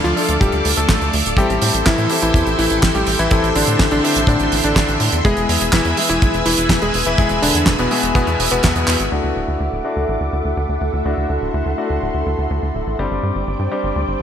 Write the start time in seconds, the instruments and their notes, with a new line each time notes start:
Already playing: grand piano A3 D4 F4 A4, string machine A4 D5 F5 D6
0.04 analog synth bass D2, electric grand piano F3 F4, closed hi-hat
0.17 grand piano A3 D4 F4 A4, open hi-hat
0.29 analog synth bass D2, closed hi-hat
0.40 analog synth bass D1, electric grand piano G3 G4, kick, closed hi-hat
0.52 analog synth bass D2, closed hi-hat
0.65 analog synth bass D2, open hi-hat
0.77 analog synth bass D2, electric grand piano A3 A4, closed hi-hat
0.89 analog synth bass A1, kick, snare, clap, closed hi-hat
1.01 analog synth bass D2, closed hi-hat
1.13 analog synth bass D2, open hi-hat
1.26 analog synth bass D1, closed hi-hat
1.37 analog synth bass A1, electric grand piano G3 G4, grand piano C4 E4 G4 A4, string machine E5 G5 C6, kick, closed hi-hat
1.50 analog synth bass A1, closed hi-hat
1.62 analog synth bass A2, open hi-hat
1.74 analog synth bass A1, closed hi-hat
1.86 analog synth bass A1, electric grand piano E3 E4, kick, snare, clap, closed hi-hat
1.98 analog synth bass A2, closed hi-hat
2.09 grand piano C4 E4 G4 A4, open hi-hat
2.22 analog synth bass A1, electric grand piano E3 E4, closed hi-hat
2.34 analog synth bass E2, kick, closed hi-hat
2.47 analog synth bass A1, closed hi-hat
2.58 analog synth bass A1, electric grand piano E3 E4, open hi-hat
2.70 analog synth bass A1, closed hi-hat
2.83 analog synth bass A1, kick, snare, clap, closed hi-hat
2.95 analog synth bass A1, electric grand piano G3 G4, closed hi-hat
3.07 analog synth bass A1, open hi-hat
3.19 analog synth bass A1, electric grand piano E3 E4, closed hi-hat
3.31 analog synth bass A1, grand piano C4 E4 G4 A4, kick, closed hi-hat
3.43 analog synth bass A1, closed hi-hat
3.55 analog synth bass A1, electric grand piano D3 D4, open hi-hat
3.67 analog synth bass A2, closed hi-hat
3.79 analog synth bass A1, kick, snare, clap, closed hi-hat
3.91 analog synth bass A1, electric grand piano D3 D4, closed hi-hat
4.04 grand piano C4 E4 G4 A4, open hi-hat
4.16 analog synth bass A1, closed hi-hat
4.27 analog synth bass A2, electric grand piano D3 D4, kick, closed hi-hat
4.39 analog synth bass A1, closed hi-hat
4.52 analog synth bass A1, open hi-hat
4.64 analog synth bass A1, electric grand piano D3 D4, closed hi-hat
4.76 analog synth bass A1, kick, snare, clap, closed hi-hat
4.88 analog synth bass A1, closed hi-hat
5.00 analog synth bass A2, open hi-hat
5.12 analog synth bass E2, closed hi-hat
5.25 analog synth bass E1, grand piano G#3 B3 E4 G#4, electric grand piano G#3 G#4, string machine B4 G#5 E6, kick, closed hi-hat
5.37 analog synth bass E1, closed hi-hat
5.49 analog synth bass E2, open hi-hat
5.61 analog synth bass E1, closed hi-hat
5.73 analog synth bass E1, electric grand piano E3 E4, kick, snare, clap, closed hi-hat
5.85 analog synth bass E2, closed hi-hat
5.97 grand piano G#3 B3 E4 G#4, open hi-hat
6.09 analog synth bass E1, electric grand piano E3 E4, closed hi-hat
6.22 analog synth bass B1, kick, closed hi-hat
6.34 analog synth bass E1, closed hi-hat
6.46 analog synth bass E1, electric grand piano E3 E4, open hi-hat
6.58 analog synth bass E1, closed hi-hat
6.69 analog synth bass E1, kick, snare, clap, closed hi-hat
6.82 analog synth bass E1, electric grand piano G#3 G#4, closed hi-hat
6.94 analog synth bass E1, open hi-hat
7.05 analog synth bass E1, electric grand piano E3 E4, closed hi-hat
7.18 analog synth bass E1, grand piano G#3 B3 E4 G#4, kick, closed hi-hat
7.29 analog synth bass E1, closed hi-hat
7.42 analog synth bass E1, electric grand piano D3 D4, open hi-hat
7.55 analog synth bass E2, closed hi-hat
7.66 analog synth bass E1, kick, snare, clap, closed hi-hat
7.79 analog synth bass E1, electric grand piano B2 B3, closed hi-hat
7.91 grand piano G#3 B3 E4 G#4, open hi-hat
8.03 analog synth bass E1, closed hi-hat
8.15 analog synth bass E1, electric grand piano B2 B3, kick, closed hi-hat
8.27 analog synth bass E2, closed hi-hat
8.39 analog synth bass E1, open hi-hat
8.51 analog synth bass E1, electric grand piano B2 B3, closed hi-hat
8.63 analog synth bass E2, kick, snare, clap, closed hi-hat
8.76 analog synth bass E2, closed hi-hat
8.87 analog synth bass E2, clap, open hi-hat
9.00 analog synth bass G#1, closed hi-hat
9.12 analog synth bass D2, grand piano A3 D4 E4 F#4, string machine A4 E5 F#5 D6
9.24 analog synth bass D2
9.36 analog synth bass D1
9.48 analog synth bass D2
9.60 analog synth bass D2
9.72 analog synth bass D1
9.85 grand piano A3 D4 E4 F#4
9.96 analog synth bass D2
10.08 analog synth bass A1
10.20 analog synth bass D2
10.33 analog synth bass D2
10.45 analog synth bass D2
10.57 analog synth bass D2
10.69 analog synth bass D2
10.81 analog synth bass D2
10.93 analog synth bass D2
11.05 analog synth bass D2, grand piano A3 D4 E4 F#4, string machine C6
11.17 analog synth bass D2
11.30 analog synth bass D2
11.42 analog synth bass D1
11.54 analog synth bass D2
11.66 analog synth bass D2
11.78 grand piano A3 D4 E4 F#4
11.90 analog synth bass D2
12.02 analog synth bass D1
12.14 analog synth bass D2
12.26 analog synth bass D2
12.38 analog synth bass D2
12.50 analog synth bass D2
12.63 analog synth bass D2
12.75 analog synth bass D1
12.87 analog synth bass A1
12.99 analog synth bass G1, grand piano G3 C4 D4 G4, string machine C5 D5 G5 D6
13.11 analog synth bass G1
13.23 analog synth bass G2
13.35 analog synth bass G1
13.47 analog synth bass G1
13.59 analog synth bass G2
13.72 grand piano G3 C4 D4 G4
13.84 analog synth bass G1
13.96 analog synth bass D2
14.08 analog synth bass G1